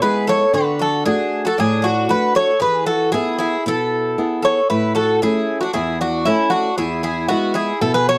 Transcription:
0.02 0.43 G#3 medium
0.02 0.44 B3 soft
0.02 0.43 E4 medium
0.02 0.26 G#4 medium
0.02 0.28 B4 medium
0.27 0.52 A4 medium
0.27 0.53 C#5 medium
0.53 1.04 D3 medium
0.53 0.78 F#4 medium
0.53 0.81 B4 medium
0.79 1.03 F#4 medium
0.79 1.05 A4 medium
1.06 1.47 A3 soft
1.06 1.42 D4 medium
1.06 1.47 D4 soft
1.06 1.48 F#4 medium
1.06 1.45 G#4 medium
1.45 1.57 F#4 medium
1.45 1.59 A4 medium
1.58 2.08 A2 medium
1.58 1.81 D4 medium
1.58 1.85 G#4 medium
1.82 2.07 D4 medium
1.82 2.10 F#4 medium
2.09 2.51 A3 medium
2.09 2.51 D4 soft
2.09 2.33 F#4 medium
2.09 2.51 F#4 medium
2.09 2.34 B4 medium
2.35 2.59 A4 medium
2.35 2.60 C#5 medium
2.60 3.12 E3 medium
2.60 2.84 G#4 medium
2.60 2.86 B4 medium
2.86 3.11 F#4 medium
2.86 3.12 A4 medium
3.12 3.55 B3 medium
3.12 3.38 E4 medium
3.12 3.55 E4 soft
3.12 3.37 G#4 medium
3.12 3.55 G#4 medium
3.39 3.64 E4 medium
3.39 3.63 G#4 medium
3.66 4.16 B2 medium
3.66 4.39 E4 medium
3.66 4.40 A4 medium
4.18 4.59 B3 medium
4.18 4.59 E4 soft
4.18 4.60 G#4 soft
4.42 4.67 A4 medium
4.42 4.68 C#5 medium
4.70 5.20 A2 medium
4.70 4.94 E4 medium
4.70 4.95 B4 medium
4.95 5.19 F#4 medium
4.95 5.19 A4 medium
5.22 5.64 A3 soft
5.22 5.64 C#4 soft
5.22 5.58 E4 medium
5.22 5.64 E4 medium
5.22 5.58 G#4 medium
5.61 5.73 D4 medium
5.61 5.72 F#4 medium
5.73 6.25 E2 medium
5.73 5.97 E4 medium
5.73 6.00 G#4 medium
6.01 6.24 D4 medium
6.01 6.27 F#4 medium
6.25 6.68 A3 soft
6.25 6.50 C#4 medium
6.25 6.68 C#4 soft
6.25 6.49 E4 medium
6.25 6.68 E4 medium
6.50 6.75 D4 medium
6.50 6.75 F#4 medium
6.78 7.28 E2 medium
6.78 7.02 E4 medium
6.78 7.01 G#4 medium
7.03 7.27 E4 medium
7.03 7.28 G#4 medium
7.28 7.71 G#3 soft
7.28 7.53 B3 medium
7.28 7.71 B3 soft
7.28 7.71 E4 medium
7.28 7.53 F#4 medium
7.54 7.79 E4 medium
7.54 7.79 G#4 medium
7.81 8.18 B2 medium
7.81 7.93 E4 medium
7.81 7.93 A4 medium
7.94 8.06 G#4 medium
7.94 8.08 B4 medium
8.09 8.18 A4 medium
8.09 8.18 C#5 medium

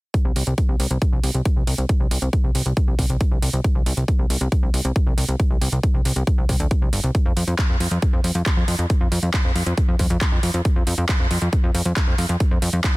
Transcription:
0.14 kick loud
0.14 closed hi-hat medium
0.25 0.32 C2 medium
0.36 0.43 C2 loud
0.36 open hi-hat loud
0.47 0.54 C2 medium
0.47 closed hi-hat medium
0.58 kick loud
0.58 closed hi-hat medium
0.69 0.76 C2 medium
0.80 0.87 C2 loud
0.80 open hi-hat loud
0.91 0.98 C2 medium
0.91 closed hi-hat medium
1.02 kick loud
1.02 closed hi-hat medium
1.13 1.20 C2 medium
1.23 1.31 C2 loud
1.23 open hi-hat loud
1.34 1.42 C2 medium
1.34 closed hi-hat medium
1.45 kick loud
1.45 closed hi-hat medium
1.56 1.64 C2 medium
1.67 1.74 C2 loud
1.67 open hi-hat loud
1.78 1.85 C2 medium
1.78 closed hi-hat medium
1.89 kick loud
1.89 closed hi-hat medium
2.00 2.07 C2 medium
2.11 2.18 C2 loud
2.11 open hi-hat loud
2.22 2.29 C2 medium
2.22 closed hi-hat medium
2.33 kick loud
2.33 closed hi-hat medium
2.44 2.51 C2 medium
2.55 2.62 C2 loud
2.55 open hi-hat loud
2.66 2.73 C2 medium
2.66 closed hi-hat medium
2.77 kick loud
2.77 closed hi-hat medium
2.88 2.95 C2 medium
2.99 3.06 C2 medium
2.99 kick medium
2.99 open hi-hat loud
3.10 3.17 C2 medium
3.10 closed hi-hat medium
3.21 kick loud
3.21 closed hi-hat medium
3.31 3.39 C2 medium
3.42 3.50 C2 loud
3.42 open hi-hat loud
3.53 3.61 C2 medium
3.53 closed hi-hat medium
3.64 kick loud
3.64 closed hi-hat medium
3.75 3.82 C2 medium
3.86 3.93 C2 loud
3.86 open hi-hat loud
3.97 4.04 C2 medium
3.97 closed hi-hat medium
4.08 kick loud
4.08 closed hi-hat medium
4.19 4.26 C2 medium
4.30 4.37 C2 loud
4.30 open hi-hat loud
4.41 4.48 C2 medium
4.41 closed hi-hat medium
4.52 kick loud
4.52 closed hi-hat medium
4.63 4.70 C2 medium
4.74 4.81 C2 medium
4.74 open hi-hat loud
4.85 4.92 C2 medium
4.85 closed hi-hat medium
4.96 kick loud
4.96 closed hi-hat medium
5.07 5.14 C2 medium
5.18 5.25 C2 loud
5.18 open hi-hat loud
5.28 5.36 C2 medium
5.28 closed hi-hat medium
5.40 kick loud
5.40 closed hi-hat medium
5.50 5.58 C2 medium
5.61 5.69 C2 loud
5.61 open hi-hat loud
5.72 5.79 C2 medium
5.72 closed hi-hat medium
5.83 kick loud
5.83 closed hi-hat medium
5.94 6.01 C2 medium
6.05 6.12 C2 loud
6.05 open hi-hat loud
6.16 6.23 C2 medium
6.16 closed hi-hat medium
6.27 kick loud
6.27 closed hi-hat medium
6.38 6.45 C2 medium
6.49 6.56 C2 medium
6.49 kick medium
6.49 open hi-hat loud
6.60 6.67 D2 medium
6.60 closed hi-hat medium
6.71 kick loud
6.71 closed hi-hat medium
6.82 6.89 C2 medium
6.93 7.00 G1 loud
6.93 open hi-hat loud
7.04 7.11 C2 medium
7.04 closed hi-hat medium
7.15 kick loud
7.15 closed hi-hat medium
7.26 7.33 F2 medium
7.37 7.44 F2 loud
7.37 open hi-hat loud
7.48 7.55 F2 medium
7.48 closed hi-hat medium
7.59 kick loud
7.59 clap loud
7.59 closed hi-hat medium
7.69 7.77 F2 medium
7.80 7.88 F2 loud
7.80 open hi-hat loud
7.91 7.98 F2 medium
7.91 closed hi-hat medium
8.02 kick loud
8.02 closed hi-hat medium
8.13 8.20 F2 medium
8.24 8.31 F2 medium
8.24 open hi-hat loud
8.35 8.42 F2 medium
8.35 closed hi-hat medium
8.46 kick loud
8.46 clap loud
8.46 closed hi-hat medium
8.57 8.64 F2 medium
8.68 8.75 F2 loud
8.68 open hi-hat loud
8.79 8.86 F2 medium
8.79 closed hi-hat medium
8.90 kick loud
8.90 closed hi-hat medium
9.01 9.08 F2 medium
9.12 9.19 F2 loud
9.12 open hi-hat loud
9.23 9.30 F2 medium
9.23 closed hi-hat medium
9.34 kick loud
9.34 clap loud
9.34 closed hi-hat medium
9.45 9.52 F2 medium
9.55 9.63 F2 loud
9.55 open hi-hat medium
9.66 9.74 F2 medium
9.66 closed hi-hat medium
9.77 kick loud
9.77 closed hi-hat medium
9.88 9.96 F2 medium
9.99 10.07 F2 loud
9.99 kick medium
9.99 open hi-hat loud
10.10 10.17 F2 medium
10.10 closed hi-hat medium
10.21 kick loud
10.21 clap loud
10.21 closed hi-hat medium
10.32 10.39 F2 medium
10.43 10.50 F2 loud
10.43 open hi-hat loud
10.54 10.61 F2 medium
10.54 closed hi-hat medium
10.65 kick loud
10.65 closed hi-hat medium
10.76 10.83 F2 medium
10.87 10.94 F2 loud
10.87 open hi-hat loud
10.98 11.05 F2 medium
10.98 closed hi-hat medium
11.09 kick loud
11.09 clap loud
11.09 closed hi-hat medium
11.20 11.27 F2 medium
11.31 11.38 F2 loud
11.31 open hi-hat medium
11.42 11.49 F2 medium
11.42 closed hi-hat medium
11.53 kick loud
11.53 closed hi-hat medium
11.64 11.71 F2 medium
11.75 11.82 F2 loud
11.75 open hi-hat medium
11.85 11.93 F2 medium
11.85 closed hi-hat medium
11.96 kick loud
11.96 clap loud
11.96 closed hi-hat medium
12.07 12.15 F2 medium
12.18 12.26 F2 loud
12.18 open hi-hat loud
12.29 12.36 F2 medium
12.29 closed hi-hat medium
12.40 kick loud
12.40 closed hi-hat medium
12.51 12.58 F2 medium
12.62 12.69 F2 loud
12.62 open hi-hat loud
12.73 12.80 F2 medium
12.73 closed hi-hat medium
12.84 kick loud
12.84 clap loud
12.84 closed hi-hat medium

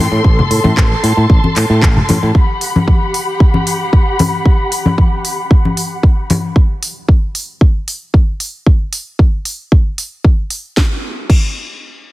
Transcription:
0.00 2.31 A4 medium
0.00 0.22 G5 medium
0.00 2.31 C6 loud
0.12 0.19 A2 medium
0.24 0.41 A1 medium
0.24 2.33 A5 medium
0.24 kick loud
0.39 low conga medium
0.51 0.59 A2 medium
0.51 open hi-hat loud
0.64 0.72 A2 medium
0.64 high conga medium
0.77 0.93 A1 medium
0.77 kick loud
0.77 clap loud
1.03 1.12 A2 medium
1.03 open hi-hat medium
1.17 1.25 A2 medium
1.30 1.38 A1 medium
1.30 kick loud
1.44 high conga medium
1.56 1.64 A2 medium
1.56 clap medium
1.56 open hi-hat loud
1.70 1.84 A2 medium
1.82 1.99 A1 medium
1.82 kick loud
1.82 clap loud
1.97 low conga medium
2.09 2.17 A2 medium
2.09 open hi-hat medium
2.09 high conga loud
2.23 2.30 A2 medium
2.35 6.53 G4 medium
2.35 6.53 F#5 medium
2.35 6.53 B5 medium
2.35 kick loud
2.61 open hi-hat medium
2.76 high conga medium
2.88 kick medium
3.14 open hi-hat medium
3.40 kick loud
3.54 high conga medium
3.67 open hi-hat medium
3.93 kick medium
4.19 open hi-hat medium
4.19 high conga loud
4.46 kick loud
4.72 open hi-hat loud
4.86 high conga medium
4.98 kick medium
5.25 open hi-hat medium
5.51 kick loud
5.65 high conga medium
5.77 open hi-hat medium
6.03 kick medium
6.30 open hi-hat medium
6.30 high conga medium
6.56 kick medium
6.83 open hi-hat medium
7.09 kick medium
7.35 open hi-hat medium
7.61 kick loud
7.88 open hi-hat medium
8.14 kick medium
8.40 open hi-hat medium
8.67 kick loud
8.93 open hi-hat medium
9.19 kick medium
9.45 open hi-hat medium
9.72 kick loud
9.98 open hi-hat medium
10.24 kick medium
10.50 open hi-hat medium
10.77 kick loud
10.77 snare medium
11.30 kick loud
11.30 crash medium

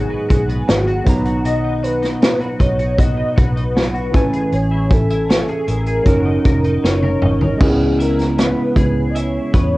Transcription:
0.00 0.15 G#1 medium
0.00 1.06 G#2 medium
0.00 0.68 D#3 medium
0.00 1.02 F#3 medium
0.00 1.03 B3 medium
0.00 1.03 D#4 medium
0.00 0.28 F#4 medium
0.00 0.29 G#4 loud
0.00 1.04 G#4 medium
0.10 0.49 B3 medium
0.29 0.61 B1 medium
0.29 0.87 F#4 medium
0.29 0.70 G#4 medium
0.29 kick medium
0.29 closed hi-hat medium
0.49 1.64 B3 medium
0.49 closed hi-hat soft
0.68 0.99 G#1 medium
0.68 2.22 D#3 medium
0.68 1.26 F#4 loud
0.68 snare loud
0.68 closed hi-hat medium
0.87 1.25 F#4 medium
0.87 closed hi-hat soft
1.04 2.14 B1 medium
1.04 1.44 B2 medium
1.04 4.09 F#3 medium
1.04 4.10 B3 medium
1.04 4.11 D#4 medium
1.04 kick medium
1.04 closed hi-hat medium
1.09 4.12 A#5 medium
1.25 1.44 F#4 medium
1.25 closed hi-hat soft
1.45 2.97 B2 medium
1.45 1.82 F#4 medium
1.45 1.85 D#5 loud
1.45 closed hi-hat medium
1.64 2.01 D#4 medium
1.83 2.39 F#4 medium
1.83 2.62 B4 loud
1.83 closed hi-hat medium
2.03 2.58 D#4 medium
2.03 snare soft
2.03 closed hi-hat soft
2.22 3.74 F#3 medium
2.22 snare loud
2.22 closed hi-hat medium
2.41 2.78 F#4 medium
2.41 closed hi-hat soft
2.59 3.22 B1 loud
2.59 3.16 D#4 medium
2.59 3.00 C#5 loud
2.59 kick medium
2.59 closed hi-hat medium
2.79 2.97 F#4 medium
2.79 closed hi-hat medium
2.98 4.22 B2 medium
2.98 3.35 F#4 medium
2.98 3.37 D#5 loud
2.98 kick medium
2.98 closed hi-hat medium
3.17 3.55 D#4 medium
3.36 4.14 B1 medium
3.36 3.93 F#4 medium
3.36 4.55 B4 loud
3.36 kick medium
3.36 closed hi-hat medium
3.56 4.22 D#4 medium
3.56 closed hi-hat soft
3.75 4.13 F#3 medium
3.75 snare loud
3.75 closed hi-hat medium
3.94 4.22 F#4 medium
3.94 closed hi-hat soft
4.12 4.45 A1 medium
4.12 6.02 E3 medium
4.12 4.53 A3 medium
4.12 6.03 C#4 medium
4.12 kick medium
4.12 closed hi-hat medium
4.16 6.04 G#5 medium
4.33 4.51 G#4 medium
4.33 closed hi-hat soft
4.52 5.45 A1 loud
4.52 4.91 G#4 medium
4.52 4.94 C#5 loud
4.52 closed hi-hat medium
4.71 5.09 E4 medium
4.91 5.71 A4 loud
4.91 kick medium
4.91 closed hi-hat medium
5.10 5.66 E4 medium
5.10 closed hi-hat soft
5.29 6.28 C#4 medium
5.29 snare loud
5.29 closed hi-hat medium
5.48 5.86 G#4 medium
5.48 closed hi-hat soft
5.68 5.99 A1 medium
5.68 6.14 E4 medium
5.68 6.84 A#4 medium
5.68 closed hi-hat medium
5.86 6.06 G#4 medium
5.86 closed hi-hat medium
6.04 6.37 F#1 medium
6.04 7.56 F#3 medium
6.04 7.68 F#3 medium
6.04 7.57 C#4 medium
6.04 7.58 D#4 medium
6.04 6.44 A#4 medium
6.04 kick medium
6.04 closed hi-hat medium
6.09 7.59 A#4 medium
6.25 6.63 D#4 medium
6.45 6.76 F1 medium
6.45 7.02 A#4 medium
6.45 kick medium
6.45 closed hi-hat medium
6.64 7.21 D#4 medium
6.64 closed hi-hat soft
6.84 7.15 F#1 medium
6.84 8.38 C#4 medium
6.84 7.58 C#5 loud
6.84 snare medium
7.03 7.40 A#4 medium
7.03 high tom medium
7.22 7.53 G#1 medium
7.22 7.69 D#4 medium
7.22 mid tom medium
7.41 7.68 A#4 medium
7.41 floor tom medium
7.58 8.53 C#2 loud
7.58 9.78 C#3 medium
7.58 9.78 G#3 medium
7.58 9.78 C#4 medium
7.58 9.78 E4 medium
7.58 kick loud
7.58 crash medium
7.62 7.97 G#4 loud
7.62 7.68 A#4 medium
7.69 9.78 B3 medium
7.99 9.14 E4 medium
7.99 8.41 A#4 medium
7.99 closed hi-hat medium
8.19 snare soft
8.19 closed hi-hat soft
8.38 9.52 B3 medium
8.38 9.11 B4 loud
8.38 snare loud
8.38 closed hi-hat medium
8.76 9.38 C#2 medium
8.76 9.78 G#4 medium
8.76 kick medium
8.76 closed hi-hat medium
9.09 9.19 D#5 medium
9.15 9.78 E4 medium
9.15 9.78 C#5 loud
9.15 closed hi-hat medium
9.54 9.78 E2 medium
9.54 9.78 B3 medium
9.54 kick medium
9.54 closed hi-hat medium

